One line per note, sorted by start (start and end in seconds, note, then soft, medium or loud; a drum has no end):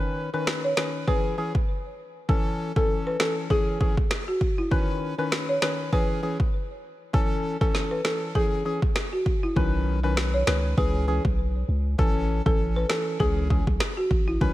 0.00 0.30 D#3 medium
0.00 0.30 C#4 medium
0.00 0.30 B4 loud
0.34 0.74 D#3 medium
0.34 0.74 C#4 medium
0.34 0.43 B4 medium
0.34 0.74 B4 medium
0.47 finger snap medium
0.47 snare loud
0.64 0.73 C#5 medium
0.77 1.05 D#3 medium
0.77 1.06 C#4 medium
0.77 0.89 B4 medium
0.77 1.06 B4 medium
0.77 finger snap medium
0.77 snare loud
1.07 1.36 E3 medium
1.07 1.36 C#4 medium
1.07 1.36 G#4 loud
1.07 1.52 B4 medium
1.07 kick medium
1.38 1.53 E3 medium
1.38 1.53 C#4 medium
1.38 1.53 G#4 medium
1.55 kick medium
2.29 2.72 E3 medium
2.29 2.72 C#4 medium
2.29 2.72 A4 loud
2.29 kick loud
2.76 3.17 E3 medium
2.76 3.17 C#4 medium
2.76 2.85 A4 medium
2.76 3.17 A4 medium
2.76 kick medium
3.07 3.16 B4 medium
3.20 3.48 E3 medium
3.20 3.48 C#4 medium
3.20 3.32 A4 medium
3.20 3.48 A4 medium
3.20 finger snap medium
3.20 snare loud
3.50 3.78 E3 medium
3.50 3.79 C#4 medium
3.50 3.95 G#4 medium
3.50 3.79 G#4 loud
3.50 kick medium
3.80 3.95 E3 medium
3.80 3.95 C#4 medium
3.80 3.96 G#4 medium
3.80 kick loud
3.97 kick medium
4.11 finger snap loud
4.11 snare loud
4.28 4.37 F#4 medium
4.41 kick medium
4.58 4.67 E4 medium
4.71 5.14 D#3 medium
4.71 5.15 C#4 medium
4.71 5.15 B4 loud
4.71 kick loud
5.18 5.59 D#3 medium
5.18 5.59 C#4 medium
5.18 5.28 B4 medium
5.18 5.59 B4 medium
5.32 finger snap medium
5.32 snare loud
5.49 5.58 C#5 medium
5.62 5.90 D#3 medium
5.62 5.90 C#4 medium
5.62 5.74 B4 medium
5.62 5.91 B4 medium
5.62 finger snap medium
5.62 snare loud
5.92 6.21 E3 medium
5.92 6.21 C#4 medium
5.92 6.21 G#4 loud
5.92 6.37 B4 medium
5.92 kick medium
6.23 6.38 E3 medium
6.23 6.38 C#4 medium
6.23 6.38 G#4 medium
6.40 kick medium
7.13 7.57 E3 medium
7.13 7.57 C#4 medium
7.13 7.57 A4 loud
7.13 kick loud
7.61 8.01 E3 medium
7.61 8.02 C#4 medium
7.61 7.70 A4 medium
7.61 8.02 A4 medium
7.61 kick medium
7.75 snare medium
7.91 8.00 B4 medium
8.05 8.33 E3 medium
8.05 8.33 C#4 medium
8.05 8.16 A4 medium
8.05 8.33 A4 medium
8.05 finger snap medium
8.05 snare loud
8.35 8.63 E3 medium
8.35 8.63 C#4 medium
8.35 8.80 G#4 medium
8.35 8.63 G#4 loud
8.35 kick medium
8.65 8.80 E3 medium
8.65 8.80 C#4 medium
8.65 8.80 G#4 medium
8.82 kick medium
8.96 finger snap loud
8.96 snare loud
9.13 9.22 F#4 medium
9.26 kick medium
9.43 9.52 E4 medium
9.56 10.43 B1 loud
9.56 9.99 D#3 loud
9.56 9.99 C#4 medium
9.56 10.00 B4 loud
9.56 kick loud
10.03 10.44 D#3 medium
10.03 10.44 C#4 medium
10.03 10.13 B4 medium
10.03 10.44 B4 medium
10.17 finger snap medium
10.17 snare loud
10.34 10.43 C#5 medium
10.47 10.74 C#2 medium
10.47 10.75 D#3 medium
10.47 10.75 C#4 medium
10.47 10.59 B4 medium
10.47 10.76 B4 medium
10.47 finger snap medium
10.47 snare loud
10.77 11.19 C#2 loud
10.77 11.05 E3 medium
10.77 11.06 C#4 medium
10.77 11.06 G#4 loud
10.77 11.22 B4 medium
10.77 kick medium
11.08 11.23 E3 medium
11.08 11.23 C#4 medium
11.08 11.23 G#4 medium
11.25 11.64 B1 medium
11.25 kick loud
11.68 11.95 C#2 medium
11.98 12.41 A1 loud
11.98 12.42 E3 medium
11.98 12.42 C#4 medium
11.98 12.42 A4 loud
11.98 kick loud
12.46 12.85 A1 loud
12.46 12.86 E3 medium
12.46 12.86 C#4 medium
12.46 12.55 A4 medium
12.46 12.87 A4 medium
12.46 kick medium
12.76 12.85 B4 medium
12.89 13.18 E3 medium
12.89 13.18 C#4 medium
12.89 13.01 A4 medium
12.89 13.18 A4 medium
12.89 finger snap medium
12.89 snare loud
13.20 13.62 C#2 medium
13.20 13.48 E3 medium
13.20 13.48 C#4 medium
13.20 13.64 G#4 medium
13.20 13.48 G#4 loud
13.20 kick medium
13.50 13.65 E3 medium
13.50 13.65 C#4 medium
13.50 13.65 G#4 medium
13.50 kick loud
13.67 13.79 B1 medium
13.67 kick medium
13.80 finger snap loud
13.80 snare loud
13.97 14.06 F#4 medium
14.11 14.38 A1 medium
14.11 kick medium
14.28 14.37 E4 medium
14.41 14.53 B1 loud
14.41 14.53 D#3 medium
14.41 14.53 C#4 medium
14.41 14.53 B4 loud
14.41 kick loud